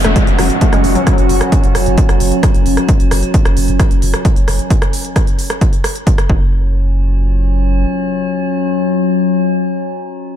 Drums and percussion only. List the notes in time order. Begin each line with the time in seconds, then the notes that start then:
0.04 cross-stick, closed hi-hat
0.16 kick, closed hi-hat
0.27 closed hi-hat
0.39 cross-stick, open hi-hat
0.50 closed hi-hat
0.61 kick, closed hi-hat
0.73 cross-stick, closed hi-hat
0.84 open hi-hat
0.95 closed hi-hat
1.07 kick, cross-stick, closed hi-hat
1.18 closed hi-hat
1.29 open hi-hat
1.41 cross-stick, closed hi-hat
1.52 kick, closed hi-hat
1.64 closed hi-hat
1.75 cross-stick, open hi-hat
1.86 closed hi-hat
1.98 kick, closed hi-hat
2.09 cross-stick, closed hi-hat
2.20 open hi-hat
2.32 closed hi-hat
2.43 kick, cross-stick, closed hi-hat
2.54 closed hi-hat
2.66 open hi-hat
2.77 cross-stick, closed hi-hat
2.89 kick, closed hi-hat
3.00 closed hi-hat
3.11 cross-stick, open hi-hat
3.23 closed hi-hat
3.34 kick, closed hi-hat
3.45 cross-stick, closed hi-hat
3.57 open hi-hat
3.68 closed hi-hat
3.79 kick, cross-stick, closed hi-hat
3.91 closed hi-hat
4.02 open hi-hat
4.14 cross-stick, closed hi-hat
4.25 kick, closed hi-hat
4.36 closed hi-hat
4.48 cross-stick, open hi-hat
4.59 closed hi-hat
4.70 kick, closed hi-hat
4.82 cross-stick, closed hi-hat
4.93 open hi-hat
5.05 closed hi-hat
5.16 kick, cross-stick, closed hi-hat
5.27 closed hi-hat
5.39 open hi-hat
5.50 cross-stick, closed hi-hat
5.61 kick, closed hi-hat
5.73 closed hi-hat
5.84 cross-stick, open hi-hat
5.96 closed hi-hat
6.07 kick, closed hi-hat
6.18 cross-stick, closed hi-hat
6.29 kick